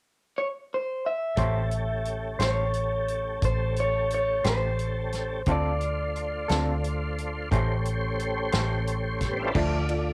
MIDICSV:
0, 0, Header, 1, 7, 480
1, 0, Start_track
1, 0, Tempo, 681044
1, 973, Time_signature, 12, 3, 24, 8
1, 7140, End_track
2, 0, Start_track
2, 0, Title_t, "Clean electric guitar"
2, 0, Program_c, 0, 27
2, 269, Note_on_c, 0, 73, 62
2, 332, Note_off_c, 0, 73, 0
2, 524, Note_on_c, 0, 72, 57
2, 732, Note_off_c, 0, 72, 0
2, 750, Note_on_c, 0, 76, 66
2, 1704, Note_off_c, 0, 76, 0
2, 1706, Note_on_c, 0, 73, 64
2, 2429, Note_off_c, 0, 73, 0
2, 2431, Note_on_c, 0, 72, 55
2, 2671, Note_off_c, 0, 72, 0
2, 2679, Note_on_c, 0, 73, 57
2, 2892, Note_off_c, 0, 73, 0
2, 2921, Note_on_c, 0, 73, 63
2, 3133, Note_off_c, 0, 73, 0
2, 3160, Note_on_c, 0, 72, 61
2, 3841, Note_off_c, 0, 72, 0
2, 3886, Note_on_c, 0, 74, 57
2, 4804, Note_off_c, 0, 74, 0
2, 7140, End_track
3, 0, Start_track
3, 0, Title_t, "Grand piano"
3, 0, Program_c, 1, 0
3, 6730, Note_on_c, 1, 65, 71
3, 6731, Note_on_c, 1, 69, 61
3, 6732, Note_on_c, 1, 74, 76
3, 6911, Note_off_c, 1, 65, 0
3, 6912, Note_off_c, 1, 69, 0
3, 6912, Note_off_c, 1, 74, 0
3, 6969, Note_on_c, 1, 65, 50
3, 6971, Note_on_c, 1, 69, 49
3, 6974, Note_on_c, 1, 74, 61
3, 7140, Note_off_c, 1, 65, 0
3, 7140, Note_off_c, 1, 69, 0
3, 7140, Note_off_c, 1, 74, 0
3, 7140, End_track
4, 0, Start_track
4, 0, Title_t, "Tonewheel organ"
4, 0, Program_c, 2, 16
4, 957, Note_on_c, 2, 69, 47
4, 958, Note_on_c, 2, 57, 47
4, 958, Note_on_c, 2, 61, 47
4, 959, Note_on_c, 2, 67, 49
4, 3821, Note_off_c, 2, 69, 0
4, 3822, Note_off_c, 2, 57, 0
4, 3822, Note_off_c, 2, 61, 0
4, 3822, Note_off_c, 2, 67, 0
4, 3854, Note_on_c, 2, 65, 51
4, 3855, Note_on_c, 2, 57, 53
4, 3856, Note_on_c, 2, 62, 53
4, 3858, Note_on_c, 2, 72, 53
4, 5280, Note_off_c, 2, 65, 0
4, 5281, Note_off_c, 2, 57, 0
4, 5282, Note_off_c, 2, 62, 0
4, 5283, Note_off_c, 2, 72, 0
4, 5292, Note_on_c, 2, 57, 48
4, 5293, Note_on_c, 2, 72, 50
4, 5295, Note_on_c, 2, 61, 49
4, 5298, Note_on_c, 2, 67, 49
4, 6520, Note_on_c, 2, 55, 52
4, 6534, Note_off_c, 2, 57, 0
4, 6542, Note_on_c, 2, 57, 58
4, 6561, Note_on_c, 2, 59, 56
4, 6581, Note_on_c, 2, 60, 54
4, 6600, Note_on_c, 2, 62, 57
4, 6622, Note_on_c, 2, 64, 59
4, 6640, Note_on_c, 2, 65, 57
4, 6649, Note_off_c, 2, 67, 0
4, 6658, Note_on_c, 2, 67, 56
4, 6677, Note_on_c, 2, 69, 58
4, 6684, Note_off_c, 2, 55, 0
4, 6695, Note_off_c, 2, 57, 0
4, 6697, Note_on_c, 2, 71, 55
4, 6704, Note_off_c, 2, 59, 0
4, 6713, Note_off_c, 2, 72, 0
4, 6714, Note_off_c, 2, 60, 0
4, 6718, Note_off_c, 2, 61, 0
4, 6722, Note_on_c, 2, 72, 55
4, 6724, Note_off_c, 2, 62, 0
4, 6732, Note_off_c, 2, 65, 0
4, 6735, Note_off_c, 2, 64, 0
4, 6735, Note_on_c, 2, 62, 59
4, 6738, Note_on_c, 2, 57, 63
4, 6740, Note_on_c, 2, 65, 62
4, 6740, Note_on_c, 2, 74, 64
4, 6753, Note_off_c, 2, 67, 0
4, 6763, Note_off_c, 2, 69, 0
4, 6772, Note_off_c, 2, 71, 0
4, 6785, Note_off_c, 2, 72, 0
4, 7140, Note_off_c, 2, 57, 0
4, 7140, Note_off_c, 2, 62, 0
4, 7140, Note_off_c, 2, 65, 0
4, 7140, Note_off_c, 2, 74, 0
4, 7140, End_track
5, 0, Start_track
5, 0, Title_t, "Clean electric guitar"
5, 0, Program_c, 3, 27
5, 964, Note_on_c, 3, 57, 51
5, 969, Note_on_c, 3, 61, 52
5, 972, Note_on_c, 3, 67, 55
5, 976, Note_on_c, 3, 72, 60
5, 1113, Note_off_c, 3, 57, 0
5, 1115, Note_off_c, 3, 61, 0
5, 1117, Note_off_c, 3, 67, 0
5, 1118, Note_off_c, 3, 72, 0
5, 1684, Note_on_c, 3, 72, 46
5, 1691, Note_on_c, 3, 67, 41
5, 1693, Note_on_c, 3, 61, 42
5, 1698, Note_on_c, 3, 57, 41
5, 1833, Note_off_c, 3, 72, 0
5, 1837, Note_off_c, 3, 67, 0
5, 1838, Note_off_c, 3, 61, 0
5, 1841, Note_off_c, 3, 57, 0
5, 3132, Note_on_c, 3, 72, 46
5, 3134, Note_on_c, 3, 67, 47
5, 3140, Note_on_c, 3, 61, 42
5, 3144, Note_on_c, 3, 57, 43
5, 3278, Note_off_c, 3, 72, 0
5, 3280, Note_off_c, 3, 67, 0
5, 3283, Note_off_c, 3, 61, 0
5, 3284, Note_off_c, 3, 57, 0
5, 3857, Note_on_c, 3, 50, 48
5, 3859, Note_on_c, 3, 60, 51
5, 3865, Note_on_c, 3, 65, 60
5, 3867, Note_on_c, 3, 69, 57
5, 4001, Note_off_c, 3, 50, 0
5, 4002, Note_off_c, 3, 60, 0
5, 4005, Note_off_c, 3, 65, 0
5, 4006, Note_off_c, 3, 69, 0
5, 4570, Note_on_c, 3, 69, 54
5, 4577, Note_on_c, 3, 65, 49
5, 4582, Note_on_c, 3, 60, 50
5, 4585, Note_on_c, 3, 50, 47
5, 4718, Note_off_c, 3, 69, 0
5, 4721, Note_off_c, 3, 65, 0
5, 4724, Note_off_c, 3, 60, 0
5, 4725, Note_off_c, 3, 50, 0
5, 5294, Note_on_c, 3, 57, 57
5, 5299, Note_on_c, 3, 61, 56
5, 5301, Note_on_c, 3, 67, 60
5, 5307, Note_on_c, 3, 72, 60
5, 5439, Note_off_c, 3, 57, 0
5, 5441, Note_off_c, 3, 61, 0
5, 5442, Note_off_c, 3, 67, 0
5, 5445, Note_off_c, 3, 72, 0
5, 6008, Note_on_c, 3, 72, 49
5, 6014, Note_on_c, 3, 67, 51
5, 6016, Note_on_c, 3, 61, 46
5, 6018, Note_on_c, 3, 57, 45
5, 6155, Note_off_c, 3, 72, 0
5, 6158, Note_off_c, 3, 67, 0
5, 6159, Note_off_c, 3, 61, 0
5, 6160, Note_off_c, 3, 57, 0
5, 6729, Note_on_c, 3, 50, 71
5, 6737, Note_on_c, 3, 53, 68
5, 6737, Note_on_c, 3, 57, 70
5, 6742, Note_on_c, 3, 62, 78
5, 6874, Note_off_c, 3, 50, 0
5, 6879, Note_off_c, 3, 53, 0
5, 6879, Note_off_c, 3, 57, 0
5, 6881, Note_off_c, 3, 62, 0
5, 7140, End_track
6, 0, Start_track
6, 0, Title_t, "Fingered electric bass"
6, 0, Program_c, 4, 33
6, 966, Note_on_c, 4, 33, 61
6, 1663, Note_off_c, 4, 33, 0
6, 1686, Note_on_c, 4, 33, 61
6, 2383, Note_off_c, 4, 33, 0
6, 2413, Note_on_c, 4, 33, 71
6, 3107, Note_off_c, 4, 33, 0
6, 3133, Note_on_c, 4, 33, 63
6, 3827, Note_off_c, 4, 33, 0
6, 3853, Note_on_c, 4, 38, 67
6, 4547, Note_off_c, 4, 38, 0
6, 4580, Note_on_c, 4, 38, 71
6, 5270, Note_off_c, 4, 38, 0
6, 5299, Note_on_c, 4, 33, 74
6, 5988, Note_off_c, 4, 33, 0
6, 6015, Note_on_c, 4, 33, 63
6, 6705, Note_off_c, 4, 33, 0
6, 6731, Note_on_c, 4, 38, 78
6, 7140, Note_off_c, 4, 38, 0
6, 7140, End_track
7, 0, Start_track
7, 0, Title_t, "Drums"
7, 965, Note_on_c, 9, 42, 53
7, 968, Note_on_c, 9, 36, 78
7, 1035, Note_off_c, 9, 42, 0
7, 1039, Note_off_c, 9, 36, 0
7, 1206, Note_on_c, 9, 42, 43
7, 1276, Note_off_c, 9, 42, 0
7, 1447, Note_on_c, 9, 42, 42
7, 1517, Note_off_c, 9, 42, 0
7, 1688, Note_on_c, 9, 42, 59
7, 1697, Note_on_c, 9, 38, 75
7, 1759, Note_off_c, 9, 42, 0
7, 1767, Note_off_c, 9, 38, 0
7, 1928, Note_on_c, 9, 42, 45
7, 1999, Note_off_c, 9, 42, 0
7, 2172, Note_on_c, 9, 42, 45
7, 2243, Note_off_c, 9, 42, 0
7, 2410, Note_on_c, 9, 42, 60
7, 2412, Note_on_c, 9, 36, 76
7, 2480, Note_off_c, 9, 42, 0
7, 2482, Note_off_c, 9, 36, 0
7, 2652, Note_on_c, 9, 42, 44
7, 2722, Note_off_c, 9, 42, 0
7, 2892, Note_on_c, 9, 42, 47
7, 2963, Note_off_c, 9, 42, 0
7, 3132, Note_on_c, 9, 42, 58
7, 3140, Note_on_c, 9, 38, 78
7, 3202, Note_off_c, 9, 42, 0
7, 3211, Note_off_c, 9, 38, 0
7, 3374, Note_on_c, 9, 42, 41
7, 3445, Note_off_c, 9, 42, 0
7, 3611, Note_on_c, 9, 42, 47
7, 3620, Note_on_c, 9, 38, 23
7, 3682, Note_off_c, 9, 42, 0
7, 3690, Note_off_c, 9, 38, 0
7, 3848, Note_on_c, 9, 42, 54
7, 3854, Note_on_c, 9, 36, 77
7, 3918, Note_off_c, 9, 42, 0
7, 3924, Note_off_c, 9, 36, 0
7, 4093, Note_on_c, 9, 42, 42
7, 4163, Note_off_c, 9, 42, 0
7, 4339, Note_on_c, 9, 42, 41
7, 4410, Note_off_c, 9, 42, 0
7, 4576, Note_on_c, 9, 42, 57
7, 4584, Note_on_c, 9, 38, 80
7, 4646, Note_off_c, 9, 42, 0
7, 4655, Note_off_c, 9, 38, 0
7, 4822, Note_on_c, 9, 42, 44
7, 4892, Note_off_c, 9, 42, 0
7, 5063, Note_on_c, 9, 42, 43
7, 5134, Note_off_c, 9, 42, 0
7, 5298, Note_on_c, 9, 36, 81
7, 5299, Note_on_c, 9, 42, 61
7, 5368, Note_off_c, 9, 36, 0
7, 5369, Note_off_c, 9, 42, 0
7, 5535, Note_on_c, 9, 42, 49
7, 5606, Note_off_c, 9, 42, 0
7, 5776, Note_on_c, 9, 42, 48
7, 5847, Note_off_c, 9, 42, 0
7, 6007, Note_on_c, 9, 42, 63
7, 6015, Note_on_c, 9, 38, 75
7, 6077, Note_off_c, 9, 42, 0
7, 6086, Note_off_c, 9, 38, 0
7, 6254, Note_on_c, 9, 42, 45
7, 6325, Note_off_c, 9, 42, 0
7, 6490, Note_on_c, 9, 42, 52
7, 6491, Note_on_c, 9, 36, 57
7, 6498, Note_on_c, 9, 38, 23
7, 6560, Note_off_c, 9, 42, 0
7, 6562, Note_off_c, 9, 36, 0
7, 6569, Note_off_c, 9, 38, 0
7, 6730, Note_on_c, 9, 49, 84
7, 6732, Note_on_c, 9, 36, 93
7, 6801, Note_off_c, 9, 49, 0
7, 6802, Note_off_c, 9, 36, 0
7, 6969, Note_on_c, 9, 51, 56
7, 7040, Note_off_c, 9, 51, 0
7, 7140, End_track
0, 0, End_of_file